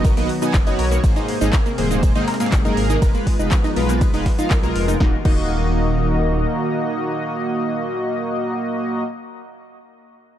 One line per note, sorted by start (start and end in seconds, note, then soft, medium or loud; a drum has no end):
0.00 0.12 F#1 medium
0.00 0.14 B2 medium
0.00 1.00 D#3 medium
0.00 1.00 F#3 medium
0.00 0.14 B3 medium
0.00 1.02 B3 loud
0.00 0.14 F#4 medium
0.00 0.14 D#5 medium
0.04 0.11 A#4 medium
0.04 0.11 A#5 medium
0.04 kick loud
0.04 closed hi-hat medium
0.04 ride medium
0.04 shaker medium
0.17 0.27 B1 medium
0.17 0.27 B2 loud
0.17 0.23 A#3 medium
0.17 0.27 B3 medium
0.17 0.27 F#4 medium
0.17 0.23 A#4 medium
0.17 0.27 D#5 loud
0.17 snare soft
0.17 open hi-hat medium
0.17 shaker soft
0.29 closed hi-hat medium
0.29 open hi-hat loud
0.42 0.52 B2 medium
0.42 0.52 B3 medium
0.42 0.51 D#4 medium
0.42 0.52 F#4 medium
0.42 0.51 D#5 medium
0.42 0.52 G#5 loud
0.42 closed hi-hat soft
0.42 shaker medium
0.54 0.73 F#1 loud
0.54 kick loud
0.54 snare loud
0.54 clap loud
0.54 closed hi-hat medium
0.54 ride medium
0.54 shaker medium
0.67 1.01 B2 loud
0.67 1.01 B3 medium
0.67 0.73 D#4 loud
0.67 1.01 F#4 medium
0.67 1.01 C#5 loud
0.67 0.73 D#5 medium
0.67 closed hi-hat soft
0.67 shaker soft
0.79 0.98 B1 loud
0.79 0.85 A#4 medium
0.79 0.85 A#5 medium
0.79 closed hi-hat medium
0.79 open hi-hat loud
0.92 0.97 A#3 medium
0.92 0.97 A#4 medium
0.92 snare medium
0.92 shaker medium
1.04 1.13 G#1 loud
1.04 1.38 G#2 medium
1.04 3.00 C3 medium
1.04 4.96 G#3 medium
1.04 3.00 A#3 medium
1.04 1.38 A#3 medium
1.04 1.38 G#4 medium
1.04 1.38 C5 medium
1.04 kick loud
1.04 closed hi-hat medium
1.04 ride medium
1.04 shaker medium
1.16 1.25 D#4 medium
1.16 1.25 D#5 medium
1.16 snare soft
1.16 closed hi-hat soft
1.16 shaker soft
1.28 closed hi-hat medium
1.28 open hi-hat loud
1.41 1.50 G#1 medium
1.41 1.57 G#2 medium
1.41 1.57 A#3 medium
1.41 1.47 D#4 loud
1.41 1.57 G#4 medium
1.41 1.57 C5 medium
1.41 1.47 D#5 medium
1.41 snare soft
1.41 closed hi-hat soft
1.41 shaker medium
1.53 1.59 A#4 medium
1.53 1.59 A#5 medium
1.53 kick loud
1.53 snare loud
1.53 clap loud
1.53 closed hi-hat medium
1.53 ride medium
1.53 shaker medium
1.66 1.72 A#3 medium
1.66 1.72 A#4 medium
1.66 closed hi-hat soft
1.66 shaker soft
1.78 2.11 D#1 medium
1.78 2.12 G#2 medium
1.78 2.12 A#3 medium
1.78 2.12 G#4 medium
1.78 2.12 C5 loud
1.78 closed hi-hat medium
1.78 open hi-hat loud
1.91 1.99 D#4 medium
1.91 1.99 D#5 medium
1.91 closed hi-hat soft
1.91 shaker medium
2.03 kick loud
2.03 closed hi-hat medium
2.03 ride medium
2.03 shaker medium
2.15 2.25 G#1 medium
2.15 2.26 G#2 loud
2.15 2.26 A#3 medium
2.15 2.21 D#4 loud
2.15 2.26 G#4 medium
2.15 2.26 C5 loud
2.15 2.21 D#5 medium
2.15 closed hi-hat soft
2.15 shaker soft
2.28 2.34 A#4 medium
2.28 2.34 A#5 medium
2.28 snare medium
2.28 closed hi-hat medium
2.28 open hi-hat loud
2.34 snare medium
2.34 closed hi-hat medium
2.40 2.50 G#2 loud
2.40 2.46 A#3 medium
2.40 2.50 A#3 medium
2.40 2.50 G#4 medium
2.40 2.46 A#4 medium
2.40 2.50 F5 loud
2.40 snare medium
2.40 closed hi-hat medium
2.40 closed hi-hat soft
2.40 shaker medium
2.46 snare medium
2.46 closed hi-hat medium
2.52 2.72 F#1 loud
2.52 kick loud
2.52 snare loud
2.52 clap loud
2.52 closed hi-hat medium
2.52 ride medium
2.52 shaker medium
2.65 2.99 G#2 loud
2.65 2.99 A#3 medium
2.65 2.74 D#4 medium
2.65 2.99 G#4 medium
2.65 2.99 A#4 loud
2.65 2.74 D#5 medium
2.65 closed hi-hat soft
2.65 shaker soft
2.77 2.96 G#1 loud
2.77 closed hi-hat medium
2.77 open hi-hat loud
2.90 2.96 D#4 loud
2.90 2.96 D#5 medium
2.90 closed hi-hat soft
2.90 shaker medium
3.02 3.12 F1 loud
3.02 4.98 F3 medium
3.02 3.36 G#3 medium
3.02 4.98 B3 medium
3.02 3.36 F4 medium
3.02 3.08 A#4 medium
3.02 3.36 B4 medium
3.02 3.08 A#5 medium
3.02 kick loud
3.02 closed hi-hat medium
3.02 ride medium
3.02 shaker medium
3.15 3.20 A#3 medium
3.15 3.20 A#4 medium
3.15 closed hi-hat soft
3.15 shaker soft
3.27 kick medium
3.27 closed hi-hat medium
3.27 open hi-hat loud
3.39 3.49 F1 medium
3.39 3.56 G#3 medium
3.39 3.48 D#4 medium
3.39 3.56 F4 medium
3.39 3.56 B4 medium
3.39 3.48 D#5 medium
3.39 closed hi-hat soft
3.39 shaker medium
3.51 kick loud
3.51 snare loud
3.51 clap loud
3.51 closed hi-hat medium
3.51 ride medium
3.51 shaker medium
3.64 3.70 D#4 loud
3.64 3.70 D#5 medium
3.64 snare soft
3.64 closed hi-hat soft
3.64 shaker soft
3.76 4.09 B1 medium
3.76 4.11 G#3 medium
3.76 4.11 F4 medium
3.76 3.82 A#4 medium
3.76 4.11 B4 loud
3.76 3.82 A#5 medium
3.76 closed hi-hat medium
3.76 open hi-hat loud
3.89 3.95 A#3 medium
3.89 3.95 A#4 medium
3.89 closed hi-hat soft
3.89 shaker medium
4.01 kick loud
4.01 closed hi-hat medium
4.01 ride medium
4.01 shaker medium
4.14 4.23 F1 medium
4.14 4.24 G#3 loud
4.14 4.23 D#4 medium
4.14 4.24 F4 medium
4.14 4.24 B4 loud
4.14 4.23 D#5 medium
4.14 snare soft
4.14 open hi-hat medium
4.14 shaker soft
4.26 kick medium
4.26 snare loud
4.26 closed hi-hat medium
4.26 open hi-hat loud
4.39 4.49 G#3 loud
4.39 4.44 D#4 loud
4.39 4.49 F4 medium
4.39 4.44 D#5 medium
4.39 4.49 F5 loud
4.39 closed hi-hat soft
4.39 shaker medium
4.50 4.70 B1 loud
4.50 4.57 A#4 medium
4.50 4.57 A#5 medium
4.50 kick loud
4.50 snare loud
4.50 clap loud
4.50 closed hi-hat medium
4.50 ride medium
4.50 shaker medium
4.63 4.97 G#3 loud
4.63 4.69 A#3 medium
4.63 4.97 F4 medium
4.63 4.97 A#4 loud
4.63 4.69 A#4 medium
4.63 closed hi-hat soft
4.63 shaker soft
4.76 4.95 F1 medium
4.76 closed hi-hat medium
4.76 open hi-hat loud
4.88 4.97 D#4 medium
4.88 4.97 D#5 medium
4.88 snare soft
4.88 closed hi-hat soft
4.88 shaker medium
5.00 5.14 D#1 loud
5.00 8.79 D#3 medium
5.00 5.14 A#3 medium
5.00 8.79 A#3 medium
5.00 5.14 D#4 loud
5.00 5.14 F#4 medium
5.00 8.79 F#4 medium
5.00 5.14 D#5 medium
5.00 8.79 D#5 medium
5.00 8.79 A#5 loud
5.00 kick loud
5.00 snare medium
5.25 6.45 D#1 medium
5.25 9.03 A#3 medium
5.25 5.39 D#4 loud
5.25 9.03 F#4 medium
5.25 9.03 D#5 loud
5.25 kick loud
5.25 crash medium